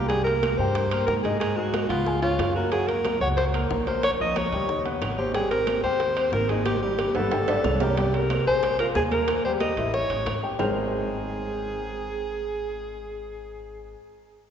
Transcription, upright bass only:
0, 0, Header, 1, 2, 480
1, 0, Start_track
1, 0, Key_signature, -4, "major"
1, 0, Tempo, 327869
1, 149, Time_signature, 4, 2, 24, 8
1, 21229, End_track
2, 0, Start_track
2, 0, Title_t, "Upright bass"
2, 0, Program_c, 0, 32
2, 0, Note_on_c, 0, 36, 90
2, 783, Note_off_c, 0, 36, 0
2, 856, Note_on_c, 0, 43, 93
2, 1532, Note_off_c, 0, 43, 0
2, 1578, Note_on_c, 0, 44, 90
2, 2701, Note_off_c, 0, 44, 0
2, 2773, Note_on_c, 0, 37, 88
2, 3450, Note_off_c, 0, 37, 0
2, 3492, Note_on_c, 0, 42, 88
2, 4618, Note_off_c, 0, 42, 0
2, 4692, Note_on_c, 0, 37, 91
2, 5369, Note_off_c, 0, 37, 0
2, 5415, Note_on_c, 0, 34, 89
2, 6539, Note_off_c, 0, 34, 0
2, 6622, Note_on_c, 0, 39, 91
2, 7295, Note_off_c, 0, 39, 0
2, 7339, Note_on_c, 0, 32, 90
2, 8461, Note_off_c, 0, 32, 0
2, 8533, Note_on_c, 0, 39, 89
2, 9210, Note_off_c, 0, 39, 0
2, 9252, Note_on_c, 0, 32, 100
2, 10378, Note_off_c, 0, 32, 0
2, 10463, Note_on_c, 0, 31, 81
2, 11135, Note_off_c, 0, 31, 0
2, 11182, Note_on_c, 0, 36, 94
2, 12303, Note_off_c, 0, 36, 0
2, 12381, Note_on_c, 0, 34, 89
2, 13054, Note_off_c, 0, 34, 0
2, 13100, Note_on_c, 0, 39, 96
2, 14222, Note_off_c, 0, 39, 0
2, 14295, Note_on_c, 0, 33, 82
2, 14748, Note_off_c, 0, 33, 0
2, 14779, Note_on_c, 0, 33, 68
2, 15007, Note_off_c, 0, 33, 0
2, 15029, Note_on_c, 0, 32, 89
2, 15453, Note_off_c, 0, 32, 0
2, 15507, Note_on_c, 0, 32, 84
2, 20399, Note_off_c, 0, 32, 0
2, 21229, End_track
0, 0, End_of_file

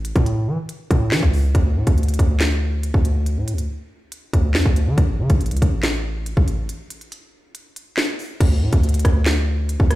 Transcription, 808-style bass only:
0, 0, Header, 1, 2, 480
1, 0, Start_track
1, 0, Tempo, 428571
1, 1734, Time_signature, 4, 2, 24, 8
1, 11148, End_track
2, 0, Start_track
2, 0, Title_t, "808-style bass"
2, 0, Program_c, 0, 38
2, 0, Note_on_c, 0, 33, 103
2, 145, Note_off_c, 0, 33, 0
2, 175, Note_on_c, 0, 45, 109
2, 534, Note_on_c, 0, 52, 99
2, 551, Note_off_c, 0, 45, 0
2, 648, Note_off_c, 0, 52, 0
2, 1014, Note_on_c, 0, 45, 105
2, 1254, Note_on_c, 0, 52, 102
2, 1271, Note_off_c, 0, 45, 0
2, 1368, Note_off_c, 0, 52, 0
2, 1375, Note_on_c, 0, 37, 97
2, 1720, Note_off_c, 0, 37, 0
2, 1734, Note_on_c, 0, 38, 104
2, 1973, Note_on_c, 0, 45, 101
2, 1990, Note_off_c, 0, 38, 0
2, 2087, Note_off_c, 0, 45, 0
2, 2094, Note_on_c, 0, 38, 101
2, 2440, Note_off_c, 0, 38, 0
2, 2454, Note_on_c, 0, 38, 107
2, 3261, Note_off_c, 0, 38, 0
2, 3294, Note_on_c, 0, 38, 106
2, 3774, Note_on_c, 0, 45, 95
2, 3791, Note_off_c, 0, 38, 0
2, 3954, Note_on_c, 0, 38, 100
2, 3971, Note_off_c, 0, 45, 0
2, 4125, Note_off_c, 0, 38, 0
2, 4855, Note_on_c, 0, 38, 108
2, 5094, Note_on_c, 0, 41, 100
2, 5111, Note_off_c, 0, 38, 0
2, 5208, Note_off_c, 0, 41, 0
2, 5214, Note_on_c, 0, 38, 105
2, 5454, Note_on_c, 0, 50, 103
2, 5470, Note_off_c, 0, 38, 0
2, 5568, Note_off_c, 0, 50, 0
2, 5574, Note_on_c, 0, 33, 108
2, 5814, Note_on_c, 0, 49, 100
2, 5830, Note_off_c, 0, 33, 0
2, 5928, Note_off_c, 0, 49, 0
2, 5935, Note_on_c, 0, 33, 110
2, 6173, Note_on_c, 0, 37, 103
2, 6190, Note_off_c, 0, 33, 0
2, 6288, Note_off_c, 0, 37, 0
2, 6294, Note_on_c, 0, 33, 106
2, 7100, Note_off_c, 0, 33, 0
2, 7134, Note_on_c, 0, 33, 100
2, 7480, Note_off_c, 0, 33, 0
2, 9414, Note_on_c, 0, 38, 107
2, 9654, Note_on_c, 0, 45, 103
2, 9671, Note_off_c, 0, 38, 0
2, 9768, Note_off_c, 0, 45, 0
2, 9774, Note_on_c, 0, 38, 107
2, 10120, Note_off_c, 0, 38, 0
2, 10134, Note_on_c, 0, 38, 107
2, 10940, Note_off_c, 0, 38, 0
2, 10974, Note_on_c, 0, 38, 104
2, 11148, Note_off_c, 0, 38, 0
2, 11148, End_track
0, 0, End_of_file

